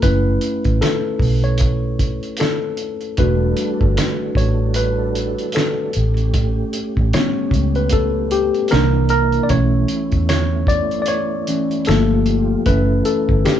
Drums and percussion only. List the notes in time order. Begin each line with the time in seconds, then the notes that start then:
0.02 kick, closed hi-hat
0.41 closed hi-hat
0.64 kick, closed hi-hat
0.82 finger snap, snare, closed hi-hat
1.20 kick, open hi-hat
1.44 closed hi-hat
1.58 kick, closed hi-hat
1.99 kick, closed hi-hat
2.23 closed hi-hat
2.37 finger snap, closed hi-hat
2.41 snare
2.77 closed hi-hat
3.01 closed hi-hat
3.17 kick, closed hi-hat
3.57 closed hi-hat
3.81 kick
3.97 finger snap, snare, closed hi-hat
4.35 kick, closed hi-hat
4.74 closed hi-hat
5.15 closed hi-hat
5.38 closed hi-hat
5.52 finger snap, closed hi-hat
5.57 snare
5.93 closed hi-hat
6.17 closed hi-hat
6.34 kick, closed hi-hat
6.73 closed hi-hat
6.97 kick
7.13 finger snap, snare, closed hi-hat
7.51 kick, closed hi-hat
7.75 closed hi-hat
7.89 kick, closed hi-hat
8.31 closed hi-hat
8.54 closed hi-hat
8.68 finger snap, closed hi-hat
8.72 snare
9.09 closed hi-hat
9.32 closed hi-hat
9.49 kick, closed hi-hat
9.88 closed hi-hat
10.12 kick, closed hi-hat
10.29 finger snap, snare, closed hi-hat
10.67 kick, closed hi-hat
10.91 closed hi-hat
11.06 closed hi-hat
11.47 closed hi-hat
11.71 closed hi-hat
11.85 finger snap, closed hi-hat
11.89 snare
12.26 closed hi-hat
12.66 kick, closed hi-hat
13.05 closed hi-hat
13.29 kick
13.45 finger snap, snare, closed hi-hat